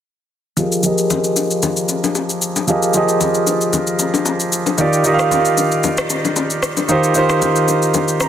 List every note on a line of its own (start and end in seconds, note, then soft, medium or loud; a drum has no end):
0.57 0.79 F3 medium
0.57 0.79 F4 medium
0.57 0.79 G4 medium
0.57 0.80 G#4 medium
0.57 0.80 A#4 medium
0.57 0.80 D#5 medium
0.57 low conga medium
0.57 shaker medium
0.72 shaker medium
0.83 1.68 F3 medium
0.83 1.68 F4 medium
0.83 1.69 G4 medium
0.83 1.69 G#4 medium
0.83 1.69 A#4 medium
0.83 1.70 D#5 medium
0.83 shaker medium
0.98 shaker soft
1.10 high bongo medium
1.10 low conga medium
1.10 shaker medium
1.24 shaker soft
1.36 low bongo soft
1.36 shaker medium
1.51 shaker soft
1.63 low bongo medium
1.63 low conga medium
1.63 shaker medium
1.77 shaker medium
1.89 high bongo soft
1.89 shaker medium
2.04 low bongo medium
2.04 shaker soft
2.15 high bongo medium
2.15 shaker medium
2.29 shaker medium
2.42 shaker medium
2.56 low bongo medium
2.56 shaker soft
2.67 2.89 F3 medium
2.67 2.89 F4 medium
2.67 2.90 G4 medium
2.67 2.90 G#4 medium
2.67 2.90 A#4 medium
2.67 2.91 D#5 medium
2.67 low conga medium
2.67 shaker medium
2.83 shaker medium
2.94 3.79 F3 medium
2.94 3.79 F4 medium
2.94 3.79 G4 medium
2.94 3.80 G#4 medium
2.94 3.80 A#4 medium
2.94 3.80 D#5 medium
2.94 shaker medium
3.09 shaker medium
3.21 high bongo medium
3.21 low conga medium
3.21 shaker medium
3.34 shaker soft
3.47 low bongo soft
3.47 shaker medium
3.61 shaker soft
3.73 low bongo medium
3.73 low conga medium
3.73 shaker medium
3.87 shaker medium
3.99 high bongo soft
3.99 shaker medium
4.14 low bongo medium
4.14 shaker soft
4.25 high bongo medium
4.25 shaker medium
4.40 shaker medium
4.52 shaker medium
4.66 low bongo medium
4.66 shaker soft
4.77 5.00 D#3 medium
4.77 5.00 D#4 medium
4.77 5.00 F4 medium
4.77 5.01 G4 medium
4.77 5.01 D5 medium
4.77 low conga medium
4.77 shaker medium
4.93 shaker medium
5.04 5.89 D#3 medium
5.04 5.89 D#4 medium
5.04 5.90 F4 medium
5.04 5.90 G4 medium
5.04 5.13 D#5 medium
5.04 shaker medium
5.13 5.94 F5 loud
5.19 cross-stick medium
5.19 shaker soft
5.31 high bongo medium
5.31 low conga medium
5.31 shaker medium
5.45 shaker medium
5.57 low bongo soft
5.57 shaker medium
5.72 shaker soft
5.84 low bongo medium
5.84 low conga medium
5.84 shaker medium
5.98 cross-stick loud
5.98 shaker medium
6.10 high bongo soft
6.10 shaker loud
6.25 low bongo medium
6.25 shaker medium
6.36 high bongo medium
6.36 shaker medium
6.50 shaker medium
6.63 cross-stick medium
6.63 shaker medium
6.77 low bongo medium
6.77 shaker soft
6.88 7.10 D#3 medium
6.88 7.11 D#4 medium
6.88 7.11 F4 medium
6.88 7.11 G4 medium
6.88 7.12 C5 medium
6.88 low conga medium
6.88 shaker medium
7.04 shaker medium
7.14 8.00 D#3 medium
7.14 8.00 D#4 medium
7.14 8.00 F4 medium
7.14 8.01 G4 medium
7.14 8.01 C5 loud
7.14 shaker medium
7.29 cross-stick medium
7.29 shaker medium
7.42 high bongo medium
7.42 low conga medium
7.42 shaker medium
7.56 shaker soft
7.68 low bongo soft
7.68 shaker medium
7.82 shaker soft
7.94 low bongo medium
7.94 low conga medium
7.94 shaker medium
8.08 shaker medium
8.20 8.28 A#5 medium
8.20 cross-stick medium
8.20 high bongo soft
8.20 shaker loud